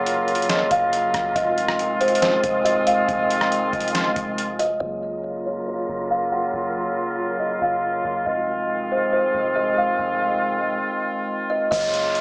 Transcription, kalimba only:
0.49 0.70 D#5 medium
0.71 0.92 F5 medium
1.36 1.97 D#5 medium
2.01 2.21 C5 medium
2.22 2.63 C5 medium
2.65 2.86 D#5 loud
2.87 3.07 F5 medium
4.59 4.79 D#5 medium
4.80 5.42 D#5 medium
5.46 5.67 C#5 medium
5.68 6.08 C#5 medium
6.11 6.31 F5 medium
6.32 6.53 F#5 medium
7.39 7.60 D#5 medium
7.62 7.82 F5 medium
8.26 8.87 D#5 medium
8.92 9.12 C5 medium
9.13 9.53 C5 medium
9.56 9.76 D#5 medium
9.78 9.98 F5 medium
11.50 11.70 D#5 medium
11.71 12.21 D#5 loud

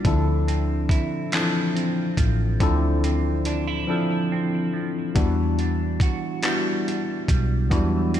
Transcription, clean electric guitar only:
0.00 0.14 G3 medium
0.00 0.47 D4 medium
0.00 0.13 F#4 medium
0.05 2.61 D3 medium
0.48 1.74 C4 medium
0.90 3.46 E4 medium
1.32 2.17 F3 medium
1.75 3.03 C4 medium
2.18 3.88 F3 medium
2.61 5.15 D3 medium
3.05 4.31 C4 medium
3.46 3.67 D4 medium
3.67 5.24 E4 medium
3.90 4.72 F3 medium
4.32 5.25 C4 medium
4.73 5.24 F3 medium
5.15 7.72 E3 medium
5.60 6.88 D4 medium
6.02 8.20 F#4 medium
6.44 7.29 G3 medium
6.88 8.14 D4 medium
7.30 8.20 G3 medium
7.72 8.20 E3 medium
8.14 8.20 C4 medium

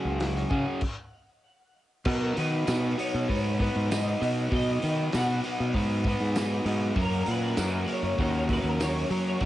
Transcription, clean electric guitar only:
0.00 1.71 F#5 loud
2.06 2.35 A#4 medium
2.38 3.00 B4 medium
3.00 3.61 C#5 loud
3.61 3.89 B4 medium
3.91 4.48 D#5 medium
4.55 5.16 D#5 loud
5.17 5.72 F#5 loud
7.02 7.28 A#4 medium
7.31 7.87 B4 medium
7.93 8.52 C#5 medium
8.52 8.68 B4 medium
8.68 8.82 A#4 medium
8.83 9.27 C#5 medium
9.28 9.43 C#5 medium

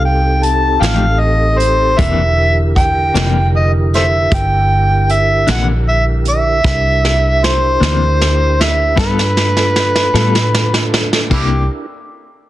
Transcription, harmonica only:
0.05 0.45 G5 medium
0.44 0.83 A5 medium
0.82 1.21 F5 medium
1.20 1.61 D#5 medium
1.59 2.00 C5 medium
1.99 2.59 E5 loud
2.76 3.50 G5 loud
3.56 3.72 D#5 medium
3.95 4.03 A4 medium
3.95 4.04 C5 medium
3.95 4.30 E5 medium
4.34 5.13 G5 loud
5.11 5.49 E5 medium
5.51 5.67 F#5 medium
5.88 6.04 E5 medium
6.30 7.46 E5 loud
7.44 8.63 C5 medium
8.61 8.99 E5 medium
8.99 10.89 B4 medium
11.33 11.40 D4 medium
11.33 11.40 E4 medium
11.33 11.68 G4 medium

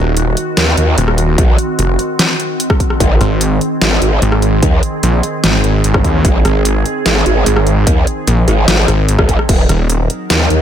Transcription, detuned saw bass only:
0.00 0.35 D#1 loud
0.98 1.37 D#1 medium
1.79 1.97 F1 medium
3.21 3.60 G#1 loud
4.22 4.61 G#1 medium
5.03 5.22 A#1 loud
5.44 5.62 G#1 loud
5.64 5.83 G#1 loud
5.84 6.03 G#1 loud
6.04 6.23 D#2 loud
6.45 6.84 G#1 loud
7.46 7.85 G#1 loud
8.27 8.46 A#1 loud
8.88 9.07 G#1 loud
9.09 9.17 G#1 loud
9.69 10.08 D#1 loud

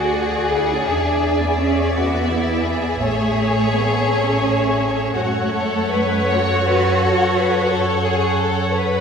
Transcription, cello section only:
0.00 0.48 F#4 medium
0.52 0.70 E4 medium
0.72 0.89 C#4 medium
0.88 1.41 D4 medium
1.42 1.59 B3 medium
1.59 1.94 C#4 medium
1.95 3.02 B3 medium
3.02 3.73 A3 medium
3.73 4.08 B3 medium
4.08 5.15 C#4 medium
5.15 6.30 A3 medium
6.31 8.07 F#4 medium

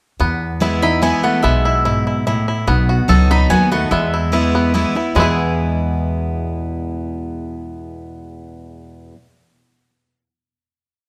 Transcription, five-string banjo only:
0.20 1.24 B3 medium
0.62 0.82 E4 medium
0.83 1.01 E4 medium
1.02 1.61 E4 medium
1.24 1.43 B3 medium
1.44 2.67 B3 medium
1.65 1.84 E4 medium
1.85 2.06 E4 medium
2.07 2.26 E4 medium
2.27 2.47 E4 medium
2.48 2.68 E4 medium
2.68 3.72 B3 medium
2.89 3.46 F#4 medium
3.09 3.68 A4 medium
3.31 3.88 D#4 medium
3.50 3.92 F#4 medium
3.72 3.92 B3 medium
3.92 4.51 B3 medium
4.14 4.32 E4 medium
4.33 4.73 E4 medium
4.55 5.12 B3 medium
4.75 4.95 E4 medium
4.96 5.16 E4 medium
5.16 9.10 G#3 medium
5.16 9.11 B3 medium
5.16 9.12 E4 medium
5.22 9.13 G#4 medium

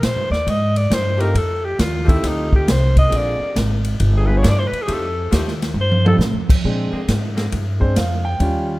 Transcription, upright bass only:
0.02 0.16 A#2 medium
0.16 0.30 G2 medium
0.30 0.45 D#2 medium
0.47 0.89 G#2 medium
0.90 1.33 G2 medium
1.34 1.77 F2 medium
1.79 2.22 D#2 medium
2.24 2.66 D2 medium
2.67 3.10 C2 medium
3.11 3.38 A#1 medium
3.39 muted upright bass stroke soft
3.56 3.98 G#1 medium
4.00 4.42 G1 loud
4.44 4.71 G2 loud
4.72 muted upright bass stroke soft
4.88 5.30 F2 medium
5.32 5.73 D#2 medium
5.74 6.17 G2 medium
6.18 6.35 A2 loud
6.33 6.48 F2 medium
6.48 6.62 D#2 medium
6.64 6.91 A#2 medium
6.92 muted upright bass stroke soft
7.08 7.50 G#2 medium
7.52 7.95 G2 medium
7.96 8.39 F2 medium
8.40 8.79 D#2 medium

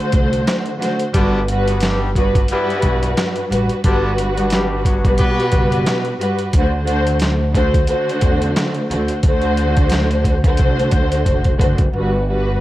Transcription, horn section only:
1.14 1.41 D3 loud
1.14 1.41 G3 loud
1.14 1.41 B3 loud
1.14 1.41 D4 loud
1.69 1.80 F#3 medium
1.69 1.80 B3 medium
1.69 1.80 D4 medium
1.69 1.80 F#4 medium
1.83 2.10 G3 loud
1.83 2.10 B3 loud
1.83 2.10 D4 loud
1.83 2.10 G4 loud
2.16 2.43 F#3 medium
2.16 2.43 B3 medium
2.16 2.43 D4 medium
2.16 2.43 F#4 medium
2.52 3.14 E3 loud
2.52 3.14 G3 loud
2.52 3.14 B3 loud
2.52 3.14 E4 loud
3.85 4.12 D3 loud
3.85 4.12 G3 loud
3.85 4.12 B3 loud
3.85 4.12 D4 loud
4.37 4.49 F#3 medium
4.37 4.49 B3 medium
4.37 4.49 D4 medium
4.37 4.49 F#4 medium
4.52 4.79 G3 loud
4.52 4.79 B3 medium
4.52 4.79 D4 medium
4.52 4.79 G4 loud
4.85 5.12 F#3 medium
4.85 5.12 B3 medium
4.85 5.12 D4 medium
4.85 5.12 F#4 medium
5.19 5.83 B3 loud
5.19 5.83 G4 loud
5.19 5.83 B4 loud

